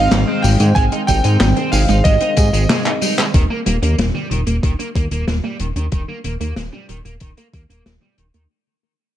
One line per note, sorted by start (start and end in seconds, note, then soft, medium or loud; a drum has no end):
0.00 3.30 D#3 medium
0.00 3.30 G#3 medium
0.00 3.30 C4 medium
0.00 0.45 F5 loud
0.11 0.25 G#1 loud
0.11 0.27 G3 medium
0.11 0.16 D#4 loud
0.11 snare loud
0.11 clap loud
0.11 closed hi-hat medium
0.11 tambourine soft
0.28 0.40 C4 loud
0.28 0.41 C4 medium
0.42 0.57 G#1 loud
0.42 0.52 G3 medium
0.42 0.49 G#3 medium
0.42 0.76 G5 loud
0.42 open hi-hat medium
0.42 tambourine medium
0.60 0.73 G#2 medium
0.60 0.75 D#3 medium
0.60 0.68 G#3 medium
0.60 closed hi-hat medium
0.60 tambourine soft
0.75 0.89 G#1 loud
0.75 0.90 C3 medium
0.75 0.84 G#3 medium
0.75 0.89 G#5 loud
0.75 0.82 G#5 loud
0.75 kick loud
0.75 closed hi-hat medium
0.75 tambourine soft
0.92 1.06 G#3 loud
0.92 1.00 D#4 loud
0.92 closed hi-hat medium
1.07 1.22 G#1 loud
1.07 1.24 G3 medium
1.07 1.16 D#4 medium
1.07 1.74 G5 loud
1.07 kick medium
1.07 closed hi-hat medium
1.07 tambourine medium
1.24 1.38 G#2 medium
1.24 1.38 C4 medium
1.24 1.37 D#4 medium
1.24 closed hi-hat medium
1.24 tambourine soft
1.40 1.54 G#1 loud
1.40 1.49 G3 medium
1.40 1.45 D#4 loud
1.40 snare loud
1.40 clap loud
1.40 closed hi-hat medium
1.40 tambourine soft
1.56 1.72 D#3 medium
1.56 1.69 C4 loud
1.56 closed hi-hat medium
1.72 1.86 G#1 loud
1.72 1.86 C3 medium
1.72 1.81 G#3 medium
1.72 2.06 F5 medium
1.72 open hi-hat medium
1.72 tambourine medium
1.88 2.02 G#1 medium
1.88 2.03 G#3 loud
1.88 1.97 D#4 medium
1.88 closed hi-hat medium
1.88 tambourine soft
2.04 2.18 G#1 loud
2.04 2.20 G3 medium
2.04 2.13 G#3 medium
2.04 2.97 D#5 loud
2.04 2.97 D#5 medium
2.04 kick loud
2.04 closed hi-hat medium
2.04 tambourine soft
2.21 2.35 C4 medium
2.21 2.29 D#4 loud
2.21 closed hi-hat medium
2.37 2.51 G#2 medium
2.37 2.46 G3 medium
2.37 2.45 G#4 loud
2.37 kick loud
2.37 closed hi-hat medium
2.37 tambourine medium
2.53 2.67 G#1 medium
2.53 2.69 D#3 medium
2.53 2.62 G#3 medium
2.53 closed hi-hat medium
2.53 tambourine soft
2.70 2.83 C3 medium
2.70 2.82 G#3 medium
2.70 snare loud
2.70 clap medium
2.70 closed hi-hat medium
2.70 tambourine soft
2.86 2.99 G#3 loud
2.86 2.91 D#4 medium
2.86 clap medium
2.86 closed hi-hat medium
3.02 3.17 G3 medium
3.02 3.14 D#4 medium
3.02 open hi-hat medium
3.02 tambourine medium
3.18 3.26 G#3 loud
3.18 3.32 C4 medium
3.18 clap loud
3.18 closed hi-hat medium
3.18 tambourine soft
3.34 3.47 D#1 medium
3.34 3.48 D3 medium
3.34 3.42 D#3 medium
3.34 kick loud
3.34 closed hi-hat loud
3.50 3.58 A#3 loud
3.50 3.64 A#3 loud
3.66 3.80 D#1 medium
3.66 3.82 G3 medium
3.66 3.74 A#3 medium
3.66 closed hi-hat medium
3.82 3.96 D#2 medium
3.82 3.95 A#3 medium
3.82 3.96 D4 medium
3.82 closed hi-hat medium
3.98 4.12 D#1 loud
3.98 4.07 G3 medium
3.98 4.04 A#3 loud
3.98 snare loud
3.98 closed hi-hat medium
4.14 4.30 D#3 medium
4.14 4.27 G3 medium
4.31 4.44 D#1 medium
4.31 4.44 D3 medium
4.31 4.39 D#3 medium
4.31 closed hi-hat medium
4.47 4.60 D#1 medium
4.47 4.61 A#3 medium
4.47 4.55 A#3 medium
4.47 closed hi-hat medium
4.63 4.76 D#1 medium
4.63 4.71 D#3 medium
4.63 4.78 G3 medium
4.63 kick loud
4.63 closed hi-hat medium
4.79 4.87 A#3 loud
4.79 4.93 D4 medium
4.79 closed hi-hat medium
4.95 5.09 D#2 medium
4.95 5.04 G3 medium
4.95 5.03 A#3 medium
4.95 kick loud
4.95 closed hi-hat medium
5.11 5.25 D#1 medium
5.11 5.27 D#3 medium
5.11 5.24 A#3 medium
5.11 closed hi-hat medium
5.27 5.41 D#1 loud
5.27 5.41 D3 medium
5.27 5.33 A#3 loud
5.27 snare loud
5.27 closed hi-hat medium
5.44 5.56 G3 loud
5.44 5.57 A#3 loud
5.60 5.73 D#1 medium
5.60 5.65 D#3 medium
5.60 5.75 G3 medium
5.60 closed hi-hat medium
5.76 5.89 D#2 medium
5.76 5.84 D#3 medium
5.76 5.90 D4 medium
5.76 closed hi-hat medium
5.92 6.05 D#1 loud
5.92 6.01 D#3 medium
5.92 6.00 G3 medium
5.92 kick loud
5.92 closed hi-hat medium
6.08 6.24 D#3 medium
6.08 6.17 A#3 loud
6.24 6.38 D#1 loud
6.24 6.38 D3 medium
6.24 6.33 A#3 medium
6.24 closed hi-hat medium
6.41 6.54 D#2 medium
6.41 6.54 A#3 loud
6.41 6.53 A#3 medium
6.41 closed hi-hat medium
6.56 6.70 D#1 loud
6.56 6.72 G3 medium
6.56 6.62 A#3 medium
6.56 snare loud
6.56 closed hi-hat medium
6.73 6.85 G3 medium
6.73 6.86 D4 medium
6.89 7.02 D#1 medium
6.89 6.97 D#3 medium
6.89 6.97 G3 medium
6.89 closed hi-hat medium
7.05 7.18 D#1 medium
7.05 7.21 D#3 medium
7.05 7.13 A#3 medium
7.05 closed hi-hat medium
7.20 7.34 D#1 loud
7.20 7.35 D3 medium
7.20 7.29 D#3 medium
7.20 kick loud
7.20 closed hi-hat medium
7.37 7.51 A#3 loud
7.37 7.46 A#3 loud
7.37 closed hi-hat medium
7.53 7.67 D#2 medium
7.53 7.69 G3 medium
7.53 7.62 A#3 medium
7.53 kick loud
7.53 closed hi-hat medium
7.70 7.83 D#1 medium
7.70 7.82 A#3 medium
7.70 7.83 D4 medium
7.70 closed hi-hat medium
7.86 7.99 D#1 loud
7.86 7.94 G3 medium
7.86 7.91 A#3 loud
7.86 snare loud
7.86 closed hi-hat medium
8.02 8.17 D#3 medium
8.02 8.14 G3 loud
8.18 8.31 D#1 medium
8.18 8.32 D3 medium
8.18 8.23 D#3 medium
8.18 closed hi-hat medium
8.34 8.47 D#2 medium
8.34 8.42 D#3 medium
8.34 8.48 A#3 medium
8.34 closed hi-hat medium